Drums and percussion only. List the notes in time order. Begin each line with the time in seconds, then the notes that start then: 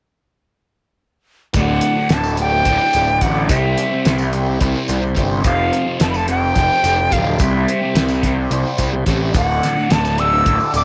1.54 kick, closed hi-hat, tambourine
1.81 closed hi-hat
2.09 snare, closed hi-hat
2.23 tambourine
2.37 closed hi-hat
2.65 kick, closed hi-hat
2.79 tambourine
2.93 closed hi-hat, tambourine
3.07 tambourine
3.21 kick, closed hi-hat
3.49 kick, closed hi-hat, tambourine
3.78 closed hi-hat
4.05 snare, closed hi-hat
4.18 tambourine
4.33 closed hi-hat
4.61 kick, closed hi-hat
4.75 tambourine
4.88 closed hi-hat, tambourine
5.02 tambourine
5.16 kick, closed hi-hat
5.44 kick, closed hi-hat, tambourine
5.73 closed hi-hat
6.00 snare, closed hi-hat
6.14 tambourine
6.28 closed hi-hat
6.56 kick, snare, closed hi-hat
6.71 tambourine
6.84 closed hi-hat, tambourine
7.12 kick, closed hi-hat
7.39 kick, closed hi-hat, tambourine
7.68 closed hi-hat
7.95 snare, closed hi-hat
8.08 tambourine
8.23 kick, snare, closed hi-hat
8.51 closed hi-hat
8.78 kick, closed hi-hat, tambourine
9.06 kick, snare, closed hi-hat
9.34 kick, closed hi-hat, tambourine
9.63 snare, closed hi-hat
9.90 snare, closed hi-hat
10.05 tambourine
10.18 closed hi-hat
10.46 kick, closed hi-hat
10.60 tambourine
10.74 closed hi-hat, tambourine